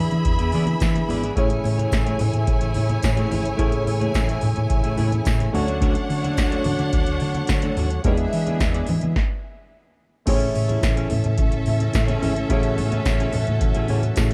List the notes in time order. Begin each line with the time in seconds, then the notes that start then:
Already playing: D3 E3 B3 D4 E4 G#4 D5 E5 B5
0.11 E3, muted clean electric guitar stroke, closed hi-hat, high conga
0.25 E2, muted clean electric guitar stroke, kick, closed hi-hat
0.39 E2 B3 E4 G#4 E5, closed hi-hat
0.52 E3 B3 E4 G#4 D5, open hi-hat, muted conga, high conga
0.66 muted clean electric guitar stroke, closed hi-hat, high conga
0.80 E3, muted clean electric guitar stroke, kick, snare, closed hi-hat, tambourine, muted conga
0.95 muted clean electric guitar stroke, snare, closed hi-hat, high conga
1.09 G#1 B3 E4 G#4 D5, open hi-hat, muted conga, low conga
1.23 B3 E4 G#4 D5, closed hi-hat
1.35 A1 C#3 A3 C#4 E4 G#4 C#5 G#5, kick, closed hi-hat
1.50 muted clean electric guitar stroke, closed hi-hat
1.63 A2, muted clean electric guitar stroke, open hi-hat, muted conga
1.78 A3 E4 G#4 C#5, closed hi-hat, high conga
1.91 A1, muted clean electric guitar stroke, kick, snare, closed hi-hat, tambourine, muted conga
2.06 A3 E4 G#4 C#5, closed hi-hat
2.19 A2, muted clean electric guitar stroke, open hi-hat, low conga
2.34 A2, muted clean electric guitar stroke, closed hi-hat, high conga
2.47 A1, muted clean electric guitar stroke, kick, closed hi-hat, muted conga
2.61 A1, muted clean electric guitar stroke, closed hi-hat
2.74 A2, open hi-hat, high conga
2.89 muted clean electric guitar stroke, closed hi-hat, high conga
3.03 A2, muted clean electric guitar stroke, kick, snare, closed hi-hat, tambourine
3.16 A3 E4 G#4 C#5, snare, closed hi-hat, high conga
3.30 G#1 A3 E4 G#4 C#5, open hi-hat, muted conga, low conga
3.44 muted clean electric guitar stroke, closed hi-hat
3.57 A1 A3 C#4 E4 G#4 C#5, kick, closed hi-hat
3.72 muted clean electric guitar stroke, closed hi-hat
3.86 A2, muted clean electric guitar stroke, open hi-hat, muted conga
4.00 A3 E4 G#4 C#5, closed hi-hat, high conga
4.13 A1, muted clean electric guitar stroke, kick, snare, closed hi-hat, tambourine
4.28 A3 E4 G#4 C#5, closed hi-hat
4.41 A2, muted clean electric guitar stroke, open hi-hat, low conga
4.56 A2, muted clean electric guitar stroke, closed hi-hat, high conga
4.70 A1, muted clean electric guitar stroke, kick, closed hi-hat
4.83 A1 A3 E4 G#4 E5, closed hi-hat
4.97 A2 A3 E4 G#4 C#5, open hi-hat, high conga
5.12 muted clean electric guitar stroke, closed hi-hat, high conga
5.25 A2, muted clean electric guitar stroke, kick, snare, closed hi-hat, tambourine, muted conga
5.40 muted clean electric guitar stroke, snare, closed hi-hat, high conga
5.52 D2 D3 F#3 A3 C#4 D4 F#4 C#5 F#5, open hi-hat, low conga
5.67 A3 D4 F#4 C#5, closed hi-hat
5.81 A3 D4 F#4 C#5, kick, closed hi-hat, muted conga
5.95 muted clean electric guitar stroke, closed hi-hat
6.09 D3, muted clean electric guitar stroke, open hi-hat, muted conga
6.23 A3 D4 F#4 C#5, closed hi-hat, high conga
6.37 D2, muted clean electric guitar stroke, kick, snare, closed hi-hat, tambourine
6.51 A3 D4 F#4 C#5, closed hi-hat
6.64 D3, muted clean electric guitar stroke, open hi-hat, muted conga, low conga
6.79 D3, muted clean electric guitar stroke, closed hi-hat, high conga
6.93 D2, muted clean electric guitar stroke, kick, closed hi-hat, muted conga
7.06 D2, muted clean electric guitar stroke, closed hi-hat
7.20 D3, open hi-hat, high conga
7.34 muted clean electric guitar stroke, closed hi-hat, high conga
7.47 D3, muted clean electric guitar stroke, kick, snare, closed hi-hat, tambourine, muted conga
7.62 A3 D4 F#4 C#5, snare, closed hi-hat, high conga
7.77 D#2 A3 D4 F#4 C#5, open hi-hat, muted conga, low conga
7.90 muted clean electric guitar stroke, closed hi-hat
8.04 E2 E3 G#3 B3 D4 E4 G#4 B4 D5 E5, kick, closed hi-hat, muted conga
8.17 muted clean electric guitar stroke, closed hi-hat
8.33 E3, muted clean electric guitar stroke, open hi-hat, muted conga
8.46 B3 E4 G#4 D5, closed hi-hat, high conga
8.60 E2, kick, snare, closed hi-hat, tambourine, muted conga
8.74 B3 E4 G#4 D5, closed hi-hat
8.87 E3, muted clean electric guitar stroke, open hi-hat, muted conga, low conga
9.01 E3, muted clean electric guitar stroke, closed hi-hat, high conga
9.16 kick, snare
10.26 A1 C#3 E3 A3 C#4 E4 G#4 A4 C#5 E5, kick, closed hi-hat, crash, muted conga
10.40 muted clean electric guitar stroke, closed hi-hat
10.54 A2, muted clean electric guitar stroke, open hi-hat, muted conga
10.68 C#4 E4 G#4 C#5, closed hi-hat, high conga
10.82 A1, muted clean electric guitar stroke, kick, snare, closed hi-hat, tambourine
10.96 C#4 E4 G#4 C#5, closed hi-hat
11.10 A2, muted clean electric guitar stroke, open hi-hat, muted conga, low conga
11.24 A2, muted clean electric guitar stroke, closed hi-hat, high conga
11.38 A1, muted clean electric guitar stroke, kick, closed hi-hat, muted conga
11.51 A1, muted clean electric guitar stroke, closed hi-hat
11.66 A2, open hi-hat, muted conga, high conga
11.80 muted clean electric guitar stroke, closed hi-hat, high conga
11.93 A2, muted clean electric guitar stroke, kick, snare, closed hi-hat, tambourine, muted conga
12.07 C#4 E4 G#4 C#5, snare, closed hi-hat, high conga
12.22 G#1 C#4 E4 G#4 C#5, open hi-hat, muted conga, low conga
12.36 closed hi-hat
12.49 A1 A3 C#4 E4 F#4 G#4 C#5, kick, closed hi-hat, muted conga
12.63 muted clean electric guitar stroke, closed hi-hat
12.77 A2, muted clean electric guitar stroke, open hi-hat, muted conga
12.91 C#4 E4 G#4 C#5, closed hi-hat, high conga
13.05 A1, muted clean electric guitar stroke, kick, snare, closed hi-hat, tambourine, muted conga
13.19 C#4 E4 G#4 C#5, closed hi-hat
13.32 A2, muted clean electric guitar stroke, open hi-hat, low conga
13.47 A2, muted clean electric guitar stroke, closed hi-hat, high conga
13.61 A1, muted clean electric guitar stroke, kick, closed hi-hat, muted conga
13.75 A1 C#4 E4 G#4 E5, closed hi-hat
13.88 A2 C#4 E4 G#4 C#5, open hi-hat, muted conga, high conga
14.03 muted clean electric guitar stroke, closed hi-hat, high conga
14.16 A2 A3 C#4 E4 G#4 C#5, muted clean electric guitar stroke, kick, snare, closed hi-hat, tambourine, muted conga
14.31 closed hi-hat